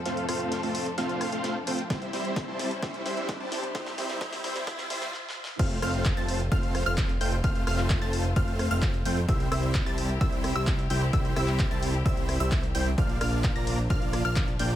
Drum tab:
CC |------------------------------------------------|------------------------------------------------|------------------------------------------------|x-----------------------------------------------|
RD |------------------------------------------------|------------------------------------------------|------------------------------------------------|------------------------------------------------|
HH |x--x--o--x--x--o--o--x--x--x--o--x--x-----o--x--|x--x--o--x--x-----o--x--x--x--o--x--x-----o--x--|x--x--o--x--x--o--o--x--x--x--o--x--------------|x--x--o--x--x--x--o--x--x--x--o--x--x--x--o--x--|
CP |------------------------------------------------|------------------------------------------------|------------------------------------------------|------------x-----------------------x-----------|
SD |o-----r-----o-----------o-----r-----o-----------|o-----o-----o-----o-----o-----o-----o-----o-----|o--o--o--o--o--o--o--o--o--o--o--o--o---o---o---|------r-----------------------r-----------------|
BD |------------------------------------------------|o-----------o-----------o-----------o-----------|o-----------o-----------o-----------------------|o-----------o-----------o-----------o-----------|

CC |------------------------------------------------|------------------------------------------------|------------------------------------------------|------------------------------------------------|
RD |------------------------------------------------|------------------------------------------------|------------------------------------------------|------x-----------x-----------x-----------x-----|
HH |x--x--o--x--x--x--o--x--x--x--o--x--x--x--o--x--|x--x--o--x--x--x--o--x--x--x--o--x--x--x--o--x--|x--x--o--x--x--x--o--x--x--x--o--x--x--x--o--x--|x--x--o--x--x--x--o--x--x--x--o--x--x--x--o--x--|
CP |---------x--x-----------------------x-----------|------------x-----------------------x-----------|---------x--x-----------------------x-----------|------------x-----------------------x-----------|
SD |------r-----------------------r-----------------|------r-----------------------r-----------------|------r-----------------------r-----------------|------r-----------------------r-----------------|
BD |o-----------o-----------o-----------o-----------|o-----------o-----------o-----------o-----------|o-----------o-----------o-----------o-----------|o-----------o-----------o-----------o-----------|